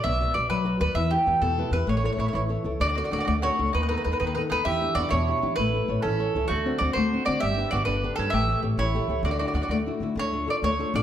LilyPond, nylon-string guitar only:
\new Staff \with { instrumentName = "Nylon-string guitar" } { \time 6/8 \key d \major \tempo 4. = 130 b8 <fis' b' d''>8 <fis' b' d''>8 fis8 <fis' b' d''>8 <fis' b' d''>8 | e8 <e' g' b'>8 <e' g' b'>8 b,8 <e' g' b'>8 <e' g' b'>8 | a8 <e' a' cis''>8 <e' a' cis''>8 e8 <e' a' cis''>8 <e' a' cis''>8 | d8 <d' fis' a'>8 <d' fis' a'>8 a8 <d' fis' a'>8 <d' fis' a'>8 |
dis8 <b dis' a'>8 <b dis' a'>8 dis8 <b dis' a'>8 <b dis' a'>8 | e8 <d' e' g'>8 <d' e' g'>8 b,8 <d' e' g'>8 <d' e' g'>8 | a8 <e' a' cis''>8 <e' a' cis''>8 e8 <e' a' cis''>8 <e' a' cis''>8 | d8 <c' d' fis'>8 <c' d' fis'>8 a8 <c' d' fis'>8 <c' d' fis'>8 |
g8 <d' g' b'>8 <d' g' b'>8 d8 <d' g' b'>8 <d' g' b'>8 | a8 <g' a' cis''>8 <g' a' cis''>8 e8 <g' a' cis''>8 <g' a' cis''>8 | d8 <d' e' fis'>8 <d' e' fis'>8 a8 <d' e' fis'>8 <d' e' fis'>8 | \key d \minor d8 <d' f' a'>8 <d' f' a'>8 a8 <d' f' a'>8 <d' f' a'>8 | }